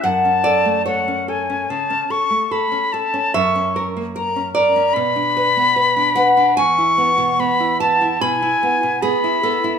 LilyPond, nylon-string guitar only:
\new Staff \with { instrumentName = "Nylon-string guitar" } { \time 4/4 \key fis \minor \tempo 4 = 73 << { fis''8 d''8 cis''4. r4. | e''4. d''2 fis''8 | gis''4. a''8 b''4 gis'8 a'8 | } \\ { fis,16 cis'16 a'16 a16 a'16 cis'16 a'16 cis'16 cis16 cis'16 a'16 a16 a'16 cis'16 a'16 cis'16 | fis,16 cis'16 ais'16 ais16 ais'16 cis'16 ais'16 cis'16 b,16 d'16 b'16 b16 b'16 d'16 b'16 d'16 | e,16 e'16 b16 b,16 b16 e'16 b16 e'16 b,16 e'16 b16 b,16 b16 e'16 b16 e'16 | } >> }